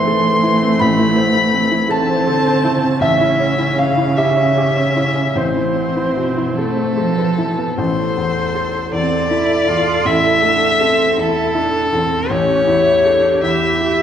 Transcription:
0.00 0.77 A1 medium
0.00 1.89 E3 medium
0.00 1.91 A3 medium
0.00 0.62 C4 medium
0.00 0.43 E4 medium
0.00 0.07 A4 medium
0.00 0.25 C5 medium
0.00 0.83 E5 loud
0.00 0.76 C6 loud
0.00 0.83 C6 loud
0.07 0.37 A4 medium
0.25 0.55 C5 medium
0.43 0.73 E4 medium
0.62 0.91 C4 medium
0.79 2.98 A1 medium
0.79 1.86 B5 loud
0.79 1.93 B5 loud
0.99 1.27 E4 medium
1.16 1.45 C5 medium
1.35 1.64 E4 medium
1.53 1.83 C4 medium
1.71 2.01 E4 medium
1.89 2.29 E3 medium
1.89 3.00 C4 medium
1.89 2.19 A4 medium
1.89 2.98 A5 loud
1.89 3.02 A5 medium
2.09 2.39 C5 medium
2.27 2.66 D3 medium
2.27 2.57 A4 medium
2.46 2.76 C5 medium
2.65 5.36 C#3 medium
2.65 2.94 E4 medium
2.83 3.02 C4 medium
3.01 5.32 A1 medium
3.01 4.14 C#4 medium
3.01 3.74 E5 medium
3.01 3.80 E5 medium
3.21 3.51 E4 medium
3.40 3.71 C#5 medium
3.59 3.90 E4 medium
3.78 4.09 C#4 medium
3.78 4.15 F5 medium
3.78 4.18 F5 medium
3.97 4.29 E4 medium
4.15 5.36 C#4 medium
4.15 4.49 G4 medium
4.15 5.39 E5 medium
4.15 5.33 E5 medium
4.37 4.68 C#5 medium
4.57 4.89 G4 medium
4.76 5.08 C#5 soft
4.96 5.28 E4 soft
5.15 5.36 C#4 soft
5.35 7.74 A1 medium
5.35 6.48 E3 medium
5.35 7.57 C4 medium
5.35 6.58 C5 medium
5.35 5.75 C5 medium
5.57 5.89 E4 soft
5.76 6.09 C5 soft
5.97 6.29 E4 soft
6.16 6.50 B2 soft
6.37 6.70 E4 soft
6.58 7.00 A3 medium
6.58 6.91 A4 soft
6.58 7.75 A4 medium
6.77 7.10 C5 soft
6.97 7.40 F3 medium
6.97 7.30 A4 medium
7.18 7.51 B4 soft
7.38 7.78 E3 medium
7.38 7.70 E4 soft
7.58 7.78 B3 soft
7.78 10.02 A1 medium
7.78 12.26 A4 medium
7.78 8.92 C5 medium
8.17 8.78 E2 soft
8.55 9.16 A4 medium
8.93 9.53 E2 soft
8.93 9.29 C4 medium
8.93 10.08 D5 loud
9.31 9.91 E4 medium
9.31 9.70 E4 medium
9.68 10.28 E2 medium
9.68 10.07 F4 medium
10.05 12.25 A1 medium
10.05 10.45 E4 medium
10.05 11.20 E5 loud
10.42 11.02 A3 medium
10.42 10.83 D4 medium
10.81 11.19 C4 medium
10.81 11.40 A4 medium
11.17 11.77 E2 soft
11.17 11.57 E4 medium
11.17 12.32 A4 loud
11.55 11.95 D4 medium
11.55 12.15 E4 medium
11.92 12.30 E2 medium
11.92 12.29 C4 medium
12.30 14.02 A1 medium
12.30 12.69 C#4 medium
12.30 14.02 G4 medium
12.30 13.43 C#5 loud
12.67 13.28 E2 medium
12.67 13.06 E4 medium
13.05 13.45 D4 medium
13.05 13.66 A4 medium
13.43 14.02 E2 soft
13.43 14.02 E4 medium
13.43 14.02 E5 medium
13.80 14.02 G4 soft

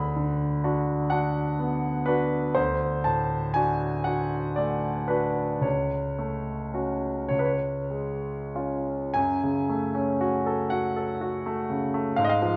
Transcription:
0.00 2.53 D2 medium
0.00 1.11 B5 medium
0.17 0.92 D3 soft
0.64 1.08 D4 soft
0.64 1.08 F#4 soft
1.10 1.55 D4 soft
1.10 1.56 F#4 soft
1.10 1.59 F#5 medium
1.59 2.37 B3 soft
2.06 2.53 D4 soft
2.06 2.53 F#4 soft
2.06 2.56 B4 medium
2.55 5.60 D2 medium
2.55 3.05 C5 medium
3.04 3.86 A2 soft
3.04 3.55 A5 medium
3.54 4.02 D4 soft
3.54 4.02 F#4 soft
3.54 4.05 G#5 medium
4.04 4.53 D4 soft
4.04 4.54 F#4 soft
4.04 4.57 F#5 medium
4.56 5.42 A3 soft
4.56 5.09 D5 medium
5.08 5.60 D4 soft
5.08 5.60 F#4 soft
5.08 5.63 B4 medium
5.61 7.26 C#2 soft
5.61 7.27 C#5 soft
6.19 7.08 A3 soft
6.74 7.27 C#4 soft
6.74 7.27 F#4 soft
7.29 9.11 C#2 soft
7.29 7.38 C#5 medium
7.39 7.47 B4 soft
7.45 9.14 C#5 soft
7.90 8.92 G#3 soft
8.55 9.11 C#4 soft
8.55 9.12 F4 soft
9.14 12.14 F#2 medium
9.14 10.71 G#5 medium
9.43 9.85 C#3 soft
9.69 10.11 A3 soft
9.95 10.36 C#4 soft
10.21 10.61 F#4 soft
10.46 10.87 A4 soft
10.70 11.12 F#4 soft
10.70 12.17 F#5 medium
10.96 11.36 A4 soft
11.21 11.60 F#4 soft
11.46 11.84 A3 soft
11.70 12.08 C#3 soft
11.94 12.18 A3 soft
12.16 12.57 G#2 medium
12.16 12.24 F5 medium
12.24 12.31 D#5 medium
12.29 12.57 F5 medium
12.42 12.57 F3 soft

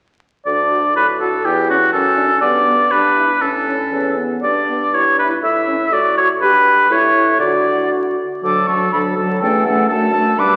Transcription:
0.46 0.87 D2 soft
0.46 0.97 D4 soft
0.46 0.92 D5 medium
0.71 0.80 F#4 soft
0.95 1.36 A2 soft
0.95 1.44 F#4 soft
0.95 1.07 B4 medium
1.20 1.29 F#4 soft
1.20 1.47 A4 soft
1.44 1.85 E2 soft
1.44 1.92 E4 soft
1.44 1.69 G4 medium
1.69 1.77 C#4 soft
1.69 1.92 F#4 medium
1.93 2.34 F#2 soft
1.93 2.43 C#4 soft
1.93 2.40 A4 medium
2.17 2.26 D4 soft
2.41 2.83 G2 soft
2.41 2.91 B3 soft
2.41 2.93 D5 medium
2.66 2.75 B3 soft
2.91 3.33 G2 soft
2.91 3.42 D4 soft
2.91 3.43 B4 medium
3.16 3.25 E4 soft
3.41 3.83 A2 soft
3.41 4.17 C#4 soft
3.41 4.17 A4 soft
3.67 3.76 C#4 soft
3.91 4.34 E2 soft
3.91 4.19 C#4 soft
4.17 4.43 B3 soft
4.42 4.84 G2 soft
4.42 4.95 D4 soft
4.42 4.96 D5 medium
4.69 4.77 B3 soft
4.92 5.33 G2 soft
4.92 5.42 E4 soft
4.92 5.18 C#5 soft
5.19 5.28 E4 soft
5.19 5.30 B4 soft
5.42 5.84 A2 soft
5.42 5.91 E4 soft
5.42 5.94 E5 medium
5.68 5.77 C#4 soft
5.92 6.33 A2 soft
5.92 6.40 F#4 soft
5.92 6.17 D5 medium
6.18 6.27 F#4 soft
6.18 6.28 C#5 medium
6.41 6.86 G2 soft
6.41 6.87 G4 soft
6.41 6.92 G4 medium
6.41 6.93 B4 medium
6.89 7.41 A2 soft
6.89 7.39 E4 soft
6.89 7.43 E4 medium
6.89 7.39 C#5 medium
7.39 8.17 D3 soft
7.39 8.16 F#4 soft
7.39 8.18 F#4 soft
7.39 7.90 D5 soft
8.43 8.87 D2 soft
8.43 8.68 F#3 soft
8.43 8.68 D4 soft
8.43 8.68 A4 soft
8.43 8.68 D6 medium
8.67 8.92 F#3 soft
8.67 8.93 D4 soft
8.67 8.93 A4 soft
8.67 8.92 C#6 medium
8.92 9.36 D2 soft
8.92 9.17 F#3 soft
8.92 9.16 D4 soft
8.92 9.17 A4 soft
8.92 8.98 B5 medium
9.17 9.41 F#3 soft
9.17 9.41 D4 soft
9.17 9.41 A4 soft
9.17 9.40 A5 soft
9.41 9.84 E2 soft
9.41 9.65 A3 soft
9.41 9.66 C#4 soft
9.41 9.65 A4 soft
9.41 9.66 G5 medium
9.64 9.89 A3 soft
9.64 9.89 C#4 soft
9.64 9.89 A4 soft
9.64 9.89 F#5 medium
9.89 10.33 F#2 medium
9.89 10.12 A3 soft
9.89 10.14 D4 soft
9.89 10.13 A4 soft
9.89 10.41 A5 medium
10.12 10.38 A3 soft
10.12 10.38 D4 soft
10.12 10.38 A4 soft
10.38 10.56 G2 medium
10.38 10.56 G3 soft
10.38 10.56 D4 soft
10.38 10.56 B4 soft
10.38 10.56 D6 medium

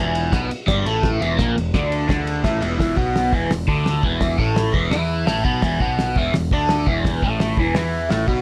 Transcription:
0.00 0.30 E1 loud
0.00 0.31 E2 loud
0.00 0.32 E3 loud
0.15 ride medium
0.32 0.49 B1 loud
0.32 0.49 B2 loud
0.32 0.50 B3 loud
0.32 kick loud
0.32 snare loud
0.32 ride loud
0.50 muted picked electric bass stroke soft
0.50 muted overdriven electric guitar stroke medium
0.50 ride medium
0.67 0.84 G1 loud
0.67 0.84 G2 loud
0.67 0.85 G3 loud
0.67 kick loud
0.67 snare loud
0.67 ride loud
0.85 1.18 A1 loud
0.85 1.20 A2 medium
0.85 1.20 A3 loud
0.85 ride medium
1.03 kick loud
1.03 snare loud
1.03 ride medium
1.20 1.37 E1 medium
1.20 1.37 E2 medium
1.20 1.37 E3 medium
1.20 ride medium
1.37 1.55 A#1 loud
1.37 1.55 A#2 loud
1.37 1.55 A#3 loud
1.37 kick loud
1.37 snare loud
1.37 ride medium
1.56 1.73 E1 medium
1.56 1.70 E2 medium
1.56 ride medium
1.74 2.06 D2 medium
1.74 2.07 D3 medium
1.74 2.08 D4 loud
1.74 kick loud
1.74 snare loud
1.74 ride medium
1.92 ride medium
2.08 2.42 D2 loud
2.08 2.43 D3 loud
2.08 2.44 D4 loud
2.08 kick loud
2.08 snare loud
2.08 ride loud
2.27 ride medium
2.44 2.60 A1 loud
2.44 2.61 A2 medium
2.44 2.61 A3 medium
2.44 kick loud
2.44 snare loud
2.44 ride loud
2.61 2.78 E1 loud
2.61 2.77 E2 medium
2.61 2.78 E3 medium
2.61 ride medium
2.78 2.96 E1 medium
2.78 2.96 E2 medium
2.78 2.96 E3 loud
2.78 kick loud
2.78 snare loud
2.78 open hi-hat medium
2.96 3.30 B1 medium
2.96 3.31 B2 medium
2.96 3.32 B3 loud
2.96 kick loud
3.16 snare loud
3.16 open hi-hat medium
3.32 3.49 E1 medium
3.32 3.49 E2 medium
3.32 3.50 E3 loud
3.32 kick loud
3.50 3.66 E1 medium
3.50 3.65 E2 medium
3.50 snare loud
3.50 open hi-hat medium
3.67 4.01 D2 medium
3.67 4.02 D3 medium
3.67 4.03 D4 loud
3.67 kick loud
3.86 snare loud
3.86 open hi-hat medium
4.03 4.36 E1 medium
4.03 4.38 E2 medium
4.03 4.39 E3 medium
4.03 kick loud
4.21 kick loud
4.21 snare loud
4.21 open hi-hat medium
4.38 4.71 A1 medium
4.38 4.73 A2 medium
4.38 4.73 A3 medium
4.38 kick loud
4.56 snare loud
4.56 open hi-hat medium
4.72 4.90 E1 loud
4.72 4.90 E2 loud
4.72 4.89 E3 loud
4.72 kick loud
4.90 5.24 E2 loud
4.90 5.26 E3 loud
4.90 5.27 E4 loud
4.90 snare loud
4.90 open hi-hat medium
5.26 5.43 A1 medium
5.26 5.44 A2 medium
5.26 5.44 A3 medium
5.26 snare loud
5.26 open hi-hat medium
5.44 5.61 B1 loud
5.44 5.62 B2 medium
5.44 5.62 B3 medium
5.44 kick loud
5.62 5.79 E1 medium
5.62 5.79 E2 loud
5.62 5.80 E3 loud
5.62 kick loud
5.62 snare loud
5.62 open hi-hat medium
5.80 6.14 B1 medium
5.80 6.15 B2 medium
5.80 6.16 B3 medium
5.80 kick loud
5.99 snare loud
5.99 open hi-hat medium
6.16 6.32 E1 loud
6.16 6.33 E2 medium
6.16 6.34 E3 loud
6.16 kick loud
6.34 6.50 E1 medium
6.34 6.48 E2 medium
6.34 snare loud
6.34 open hi-hat medium
6.51 6.84 D2 medium
6.51 6.87 D3 medium
6.51 6.87 D4 medium
6.51 kick loud
6.69 snare loud
6.69 open hi-hat medium
6.86 7.20 E1 medium
6.86 7.21 E2 medium
6.86 7.22 E3 medium
6.86 kick loud
7.05 kick loud
7.05 snare loud
7.05 open hi-hat medium
7.22 7.55 A1 medium
7.22 7.57 A2 medium
7.22 7.58 A3 loud
7.22 kick loud
7.40 snare loud
7.40 open hi-hat medium
7.57 7.74 E1 medium
7.57 7.75 E2 loud
7.57 7.74 E3 loud
7.57 kick loud
7.75 8.08 E2 loud
7.75 8.09 E3 loud
7.75 8.10 E4 loud
7.75 snare loud
7.75 open hi-hat medium
8.10 8.27 A1 medium
8.10 8.27 A2 medium
8.10 8.27 A3 medium
8.10 snare loud
8.10 open hi-hat medium
8.27 8.42 B1 medium
8.27 8.42 B2 medium
8.27 8.42 B3 loud
8.27 kick loud

